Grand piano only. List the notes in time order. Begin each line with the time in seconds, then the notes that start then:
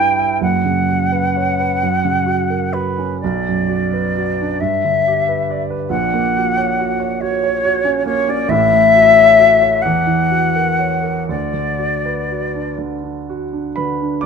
Already playing: G2 G3 E4 B4
0.19 E5
0.41 F#1 F#2
0.65 C#3
0.89 F#4
1.12 B4
1.36 C#5
1.60 B4
1.83 F#2
2.05 C#3
2.26 F#4
2.50 A#4
2.74 F#4
2.99 C#4
3.24 B1
3.48 F#2
3.68 F#4
3.93 B4
4.17 F#4
4.41 D4
4.61 G2
4.85 D3
5.08 G4
5.29 B4
5.51 D5
5.70 B4
5.89 A#1 A#2
6.14 A#3
6.37 F#4
6.57 C#5
6.80 F#4
7.00 C#5
7.22 F#4
7.44 C#5
7.65 F#4
7.85 C#4
8.06 A#3
8.28 C#4
8.48 A1 A2
8.72 A3
8.95 F#4
9.16 C#5
9.39 F#4
9.62 C#5
9.85 E2
10.07 E3
10.31 F#4
10.56 A#4
10.79 C#5
11.03 A#4
11.29 D2
11.54 D3
11.79 F#4
12.05 B4
12.31 F#4
12.55 D4
12.78 D3
13.03 D4
13.29 F#4
13.53 D4
13.76 D3 B4 B5
14.02 D4
14.21 D5 D6